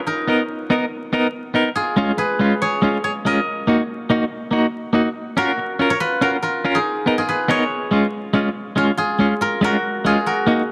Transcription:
Already playing: C#4 F4 C#5
0.07 D#4 A#4
0.28 B3 D#4 A#4
0.70 B3 D#4 A#4
1.13 B3 D#4 A#4
1.54 B3 D#4 A#4
1.76 F4 G#4
1.97 G#3 C#4 F4
2.17 G#4 B4, muted clean electric guitar stroke
2.40 G#3 C#4 F4
2.62 G#4 C#5
2.82 G#3 C#4 F4
3.04 G#4 C#5
3.25 G#3 C#4 F4 A#4 D#5
3.67 A#3 D#4 F#4
4.10 A#3 D#4 F#4
4.51 A#3 D#4 F#4
4.93 A#3 D#4 F#4
5.37 C#4 F4 F#4 A#4
5.58 muted clean electric guitar stroke
5.79 C#4 F4 A#4
5.90 A#4 C#5
6.00 F4 B4
6.21 C#4 F4 F#4 A#4
6.42 F4 A#4
6.64 C#4 F4 A#4
6.75 D#4 G#4
7.06 B3 D#4 A#4
7.18 F4 G#4
7.29 G#4 B4
7.48 B3 D#4 G#4 A#4 C#5
7.91 G#3 C#4 F4
8.33 G#3 C#4 F4
8.76 G#3 C#4 F4
8.98 F4 G#4, muted clean electric guitar stroke
9.19 G#3 C#4 F4
9.41 F4 A#4
9.61 G#3 C#4 F4 F#4 A#4
10.05 G#3 C#4 F4 G#4
10.26 F#4 A#4
10.47 A#3 D#4 F#4

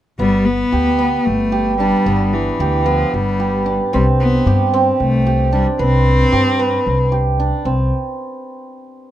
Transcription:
0.19 G1 G3 B3
0.45 B3
0.72 D2 G4
0.99 B3
1.25 G1 A3
1.52 G4
1.77 G3 D4
2.06 G1 B3
2.33 E3
2.60 D2 G4
2.86 F3 B3
3.13 G1 G3
3.40 G4
3.66 D4
3.93 C2 G3 C4
4.20 B3
4.46 G2 G4
4.74 C4
5.00 C2 A3
5.27 G4
5.53 G3 D4
5.79 C2 C4 B4
6.32 G2 G4
6.59 B4
6.86 C2
7.12 G4
7.40 D4
7.65 C2 C4

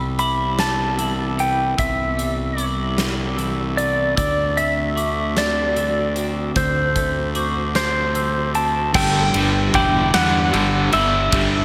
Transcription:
Already playing: C2 C3 E3 G3 B3 C4 E4 G4 B5 E6
0.19 E4 B5 D6, closed hi-hat
0.59 B3 A5, snare, closed hi-hat
0.98 E3 E6, closed hi-hat
1.38 B3 G5, closed hi-hat
1.78 C2 C3 E5 E6, kick, closed hi-hat
2.17 G3, closed hi-hat
2.57 E4 D6, closed hi-hat
2.97 B3, snare, closed hi-hat
3.37 E3 E6, closed hi-hat
3.77 B3 D5, closed hi-hat
4.17 D2 D3 A3 C4 F#4 D5 E6, kick, closed hi-hat
4.56 A3 E5, closed hi-hat
4.96 F#4 D6, closed hi-hat
5.36 C4 D5, snare, closed hi-hat
5.76 D3 E6, closed hi-hat
6.16 C4, closed hi-hat
6.55 D2 D3 C5 E6, kick, closed hi-hat
6.95 A3, kick, closed hi-hat
7.35 F#4 D6, closed hi-hat
7.75 C4 C5, snare, closed hi-hat
8.15 D3 E6, closed hi-hat
8.55 C4 A5, closed hi-hat
8.94 G1 G2 D3 G3 G5 E6, kick, crash
9.34 G1 G2 D3 G3, ride
9.74 E1 G2 D3 G3 E4 G5 D6, kick, ride
10.14 E2 G2 D3 G3 B3 F#5, snare, ride
10.53 G1 G2 D3 G3 E6, ride
10.92 G1 G2 D3 G3 E4 E5, ride
11.32 G1 G2 D3 G3 E6, kick, ride

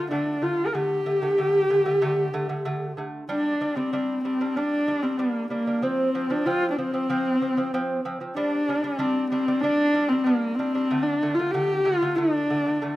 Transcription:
0.11 D3 A3 D4
0.42 D3 A3 F4
0.66 A#4
0.75 D3 A3 G4
1.06 D3 A3
1.22 D3 A3
1.38 D3 A3
1.70 D3 A3
1.86 D3 A3
2.02 D3 A3
2.34 D3 A3
2.49 D3 A3
2.65 D3 A3
2.97 D3 A3
3.29 G3 D4
3.61 G3 D4
3.75 G3 C4 D4
3.93 G3 D4
4.24 G3 C4 D4
4.41 G3 D4
4.56 G3 D4
4.88 G3 D4
5.02 G3 C4 D4
5.17 G3 A#3 D4
5.50 G3 A#3 D4
5.67 G3 D4
5.82 F3 C4
6.15 F3 C4
6.30 F3 C4 D4
6.45 F3 C4 F4
6.70 D4
6.76 F3 C4
6.93 F3 C4
7.10 F3 C4
7.42 F3 C4
7.57 F3 C4
7.74 F3 C4
8.05 F3 C4
8.20 F3 C4
8.36 G3 D4
8.69 G3 D4
8.83 G3 C4 D4
8.99 G3 D4
9.30 G3 C4 D4
9.48 G3 D4
9.61 G3 D4
9.94 G3 D4
10.08 G3 C4
10.12 D4
10.24 G3 A#3 D4
10.55 C4
10.59 G3 D4
10.75 G3 D4
10.90 D3 A3
11.03 D4
11.22 D3 A3
11.35 F4
11.39 D3 A3
11.51 D3 A3 G4
11.84 D3 A3 F4
12.02 D3 A3
12.16 D3 A3 D4
12.50 D3 A3
12.66 D3 A3
12.82 D3 A3

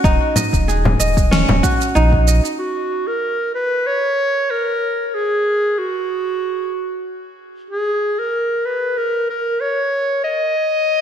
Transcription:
Already playing: C#4 F#4 G#4 D#5
0.04 D#1 D#4, kick, shaker
0.36 D#5, frame drum, shaker
0.53 D#1, kick, shaker
0.68 G#4, shaker
0.85 frame drum
1.00 D#1 D#5, shaker
1.17 kick, shaker
1.31 C#4, snare, shaker
1.49 D#1, frame drum
1.63 F#4, kick, shaker
1.81 shaker
1.95 A#1 D#4, shaker
2.13 kick
2.27 D#5, shaker
2.45 shaker
2.58 F#4
3.07 A#4
3.55 B4
3.86 C#5
4.51 A#4
5.08 A#4
5.14 G#4
5.78 F#4
7.70 G#4
8.19 A#4
8.65 B4
8.97 A#4
9.30 A#4
9.61 C#5
10.24 D#5

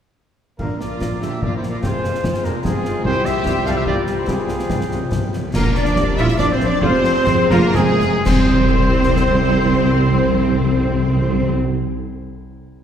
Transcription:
0.59 A#1 A#2 D3 F3 A#3 D4 F4 A#4 F5, concert bass drum, crash
0.80 A#1 A#2 D3 F4 A#4 D5, snare
1.01 A#1 A#2 D3, concert bass drum, snare
1.21 A#1 A#2 D3 G4 C5 E5, snare
1.42 A#1 A#2 D3 F4 A#4 D5, concert bass drum
1.56 E4 A4 C5
1.63 A#1 A#2 D3, snare
1.70 F4 A#4 D5
1.82 F1 F2 C3 G#3 C4 F4 G#4 C5 G5, concert bass drum, snare
2.04 F1 F2 C3, snare
2.14 snare
2.24 F1 F2 C3, concert bass drum, snare
2.34 snare
2.44 F1 F2 C3 D4 G4 A#4, snare
2.63 F1 F2 C3 C4 F4 G#4, concert bass drum, snare
2.84 F1 F2 C3, snare
3.04 C2 C3 G3 E4 G4 C5 G5, concert bass drum
3.24 C2 C3 G4 C5 E5, snare
3.45 C2 C3, concert bass drum, snare
3.66 C2 C3 A4 D5 F5, snare
3.76 G4 C5 E5
3.86 C2 C3 F4 A#4 D5, concert bass drum
4.07 C2 C3, snare
4.18 E4 A4 C5
4.28 C2 C3 F3 C4 F4 G#4 G5, concert bass drum, snare
4.36 C3
4.43 C3
4.49 C2 C3, snare
4.57 C3, snare
4.65 C3
4.70 C2 C3, concert bass drum, snare
4.81 C3, snare
4.89 C2 C3, snare
4.98 C3
5.05 C3
5.12 C2 C3, concert bass drum, snare
5.21 C3
5.27 C3
5.33 C2 C3, snare
5.44 C3
5.54 A#1 D3 A#3 F4 A#4, concert bass drum, snare, crash, cymbal swell
5.74 F3 D4 D5, snare
5.85 snare
5.96 A#1 A#3 G4, concert bass drum, snare
6.16 A#1 G3 E4 F4 E5, snare
6.28 snare
6.38 A#1 F3 D4 F4 D5, concert bass drum, snare
6.52 E3 C4 C5
6.60 A#1 A#3, snare
6.67 F3 D4 D5
6.81 F1 F3 G#3 C4 F4 G4 C5, concert bass drum
7.04 snare
7.27 F1 G#3 G#4, concert bass drum, snare
7.50 F1 D3 A#3 F4 A#4, snare
7.75 F1 C3 G#3 C4 G#4 C5, concert bass drum, snare
8.00 F1 G#3, snare
8.26 C2 C3 C4 E4 G4 C5, concert bass drum, snare, crash
8.32 C3
8.39 C3
8.46 C3
8.53 C3
8.60 C3
8.67 C3
8.74 C3
8.81 C3
8.87 C3
8.94 C3
9.01 C3, snare
9.07 C3
9.14 C3, snare
9.21 C3
9.28 C3
9.35 C3
9.42 C3
9.49 C3
9.56 C3
9.64 C3
9.71 C3
9.79 C3
9.85 C3
9.93 C3
9.99 C3
10.07 C3
10.13 C3
10.20 C3
10.27 C3
10.33 C3
10.39 C3
10.46 C3
10.53 C3
10.60 C3
10.66 C3
10.73 C3
10.80 C3
10.87 C3
10.95 C3
11.01 C3
11.08 C3
11.15 C3
11.21 C3
11.28 C3
11.35 C3
11.41 C3
11.48 C3

